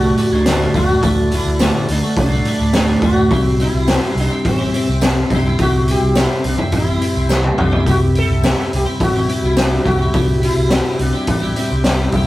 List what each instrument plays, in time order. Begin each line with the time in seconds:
Already playing: fingered electric bass C2, clean electric guitar D2, sitar F#4, tonewheel organ F#4 D5 A5
0.00 clean electric guitar D3 A3 F#4
0.16 clean electric guitar A2 D3 A3 F#4, open hi-hat
0.30 fingered electric bass D1, clean electric guitar D3 A3 F#4
0.34 sitar D4
0.45 clean electric guitar D2 A2 D3 A3 F#4, snare, open hi-hat, tambourine
0.50 sitar D4
0.73 fingered electric bass D1, clean electric guitar A2 D3 A3 F#4, sitar F#4, kick, open hi-hat
0.88 clean electric guitar D3 A3 F#4
1.01 fingered electric bass D1, clean electric guitar D2 A2 D3 A3 F#4, kick, open hi-hat
1.21 sitar E4
1.30 clean electric guitar A2 D3 A3 F#4, open hi-hat
1.34 sitar E4
1.45 fingered electric bass D2
1.59 clean electric guitar D2 A2 D3 A3 F#4, snare, open hi-hat, tambourine
1.73 clean electric guitar D3 A3 F#4
1.88 fingered electric bass D2, sitar D4, muted clean electric guitar stroke, open hi-hat
2.02 clean electric guitar D3 A3 F#4
2.17 fingered electric bass C2, sitar D4, kick, open hi-hat
2.30 clean electric guitar A3 F#4
2.34 clean electric guitar D3
2.45 clean electric guitar A2 D3 A3 F#4, open hi-hat
2.58 fingered electric bass D1, clean electric guitar D3 A3 F#4
2.73 clean electric guitar D2 A2 D3 A3 F#4, sitar D4, snare, open hi-hat, tambourine
3.01 fingered electric bass D1, clean electric guitar A2 D3 A3 F#4, sitar F#4, kick, open hi-hat
3.16 clean electric guitar D3 A3 F#4
3.29 fingered electric bass C2, clean electric guitar C3 G3 C4 E4 G4, tonewheel organ G3 E5 C6, kick, open hi-hat
3.33 clean electric guitar C5
3.58 clean electric guitar C4 E4 G4 C5, sitar E4, open hi-hat
3.73 fingered electric bass C2
3.87 clean electric guitar C3 G3 C4 E4 G4 C5, snare, open hi-hat, tambourine
4.01 clean electric guitar C4 E4 G4 C5
4.15 fingered electric bass C2, muted clean electric guitar stroke, open hi-hat
4.20 sitar D4
4.28 clean electric guitar C4 E4 G4 C5
4.45 fingered electric bass A1, sitar C4, kick, open hi-hat
4.58 clean electric guitar C4 E4 G4 C5
4.73 clean electric guitar C4 E4 G4 C5, open hi-hat
4.88 fingered electric bass C2, clean electric guitar C4 E4 G4 C5
5.01 clean electric guitar C3 G3 C4 E4 G4 C5, snare, open hi-hat, tambourine
5.07 sitar B3
5.30 fingered electric bass C2, clean electric guitar C4 E4 G4, kick, open hi-hat
5.35 sitar D4, clean electric guitar C5
5.46 clean electric guitar C4 E4 G4 C5, sitar E4
5.59 fingered electric bass C2, clean electric guitar C3 G3 C4 E4, sitar F#4, kick, open hi-hat
5.63 clean electric guitar G4 C5
5.87 clean electric guitar C4 E4 G4 C5, sitar G4, open hi-hat
6.01 fingered electric bass C2
6.15 clean electric guitar C3 G3 C4 E4 G4 C5, snare, open hi-hat, tambourine
6.20 sitar E4
6.31 clean electric guitar C4 E4 G4 C5
6.44 fingered electric bass C2, sitar D4, muted clean electric guitar stroke, open hi-hat
6.57 clean electric guitar C4 E4 G4 C5, kick
6.72 fingered electric bass A1, kick, open hi-hat
6.76 sitar E4
6.85 clean electric guitar C4 E4 G4 C5
6.99 clean electric guitar C4 E4 G4 C5, open hi-hat
7.14 fingered electric bass C2, clean electric guitar C4 E4 G4 C5
7.29 clean electric guitar C3 G3 C4 E4 G4 C5, snare, tambourine
7.44 high tom
7.57 fingered electric bass C2, clean electric guitar C4 E4 G4 C5, sitar D4, mid tom
7.71 clean electric guitar C4 E4 G4 C5, floor tom
7.75 sitar E4
7.85 fingered electric bass C2, clean electric guitar C3 G3 C4 E4 G4, tonewheel organ B5, kick, open hi-hat
7.89 sitar F#4, clean electric guitar C5
8.14 clean electric guitar C4 E4 G4 C5, open hi-hat
8.19 sitar A4
8.29 fingered electric bass C2
8.42 clean electric guitar C3 G3 C4 E4 G4 C5, snare, open hi-hat, tambourine
8.56 clean electric guitar C4 E4 G4 C5
8.71 fingered electric bass C2, muted clean electric guitar stroke, open hi-hat
8.76 sitar G4
8.86 clean electric guitar C4 E4 G4 C5
9.00 fingered electric bass A1, sitar F#4, kick, open hi-hat
9.13 clean electric guitar C4 E4 G4 C5
9.28 clean electric guitar C4 E4 G4 C5, open hi-hat
9.43 fingered electric bass C2, clean electric guitar C4 E4 G4 C5, sitar E4
9.55 clean electric guitar C3 G3 C4 E4 G4 C5, sitar D4, snare, open hi-hat, tambourine
9.83 fingered electric bass C2, clean electric guitar C4 E4 G4 C5, sitar F#4, kick, open hi-hat
9.99 clean electric guitar C4 E4 G4 C5
10.12 fingered electric bass C2, clean electric guitar C3 G3 C4 E4 G4 C5, kick, open hi-hat
10.41 clean electric guitar C4 E4 G4 C5, open hi-hat
10.45 sitar E4
10.56 fingered electric bass C2
10.70 clean electric guitar C3 G3 C4 E4 G4 C5, snare, open hi-hat, tambourine
10.84 clean electric guitar C4 E4 G4 C5
10.99 fingered electric bass C2, sitar D4, muted clean electric guitar stroke, open hi-hat
11.13 clean electric guitar C4 E4 G4 C5
11.27 fingered electric bass A1, sitar D4, kick, open hi-hat
11.40 clean electric guitar C4 E4 G4 C5
11.56 clean electric guitar C4 E4 G4 C5, open hi-hat
11.71 fingered electric bass C2, clean electric guitar C4 E4 G4 C5
11.84 clean electric guitar C3 G3 C4 E4, snare, open hi-hat, tambourine
11.88 clean electric guitar G4 C5
12.12 fingered electric bass C2, clean electric guitar C4 E4 G4, kick, open hi-hat
12.17 clean electric guitar C5